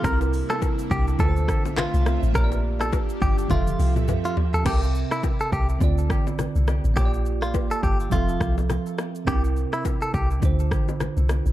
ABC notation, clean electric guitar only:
X:1
M:4/4
L:1/16
Q:"Swing 16ths" 1/4=104
K:Cmix
V:1 name="Clean electric guitar"
B z2 A z2 G z A3 z F3 z | B z2 A z2 G z F3 z2 F z A | G z2 E z A G z8 z | G z2 F z A G z F3 z4 z |
G z2 E z A G z8 z |]